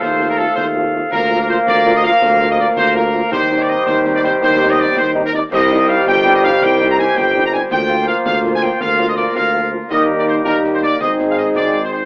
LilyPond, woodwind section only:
\new Staff \with { instrumentName = "Woodwind section" } { \time 6/8 \key c \dorian \tempo 4. = 109 << { f''2. | f''2.~ | f''2. | c''2.~ |
c''2. | \key bes \mixolydian c''2.~ | c''2.~ | c''2. |
bes'2. | bes'2. | c''2. | } \\ { a'2. | bes'2.~ | bes'2. | g'2.~ |
g'2. | g'2.~ | g'2. | f'2.~ |
f'2. | g'2. | aes'2. | } >> }